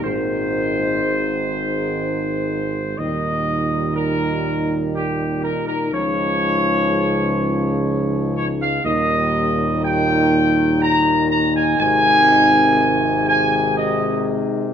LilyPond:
<<
  \new Staff \with { instrumentName = "Trumpet section" } { \time 3/4 \key ees \major \tempo 4 = 61 c''2. | ees''4 bes'4 g'8 bes'16 bes'16 | des''2~ des''8 des''16 f''16 | ees''4 g''4 bes''8 bes''16 aes''16 |
aes''4. aes''8 ees''8 r8 | }
  \new Staff \with { instrumentName = "French horn section" } { \clef bass \time 3/4 \key ees \major << { ees'2. | ees'2.~ | ees'2. | ees'2.~ |
ees'2. | } \\ { aes2. | g2. | aes2. | g2. |
aes2. | } >> }
  \new Staff \with { instrumentName = "Trombone section" } { \clef bass \time 3/4 \key ees \major << { ees2. | ees2. | f2. | ees2.~ |
ees2. | } \\ { bes,4 aes,2 | bes,2. | des2. | bes,2. |
c2. | } >> }
  \new Staff \with { instrumentName = "Tuba" } { \clef bass \time 3/4 \key ees \major aes,,2. | ees,2~ ees,8 r8 | des,2. | ees,2. |
aes,,2~ aes,,8 r8 | }
>>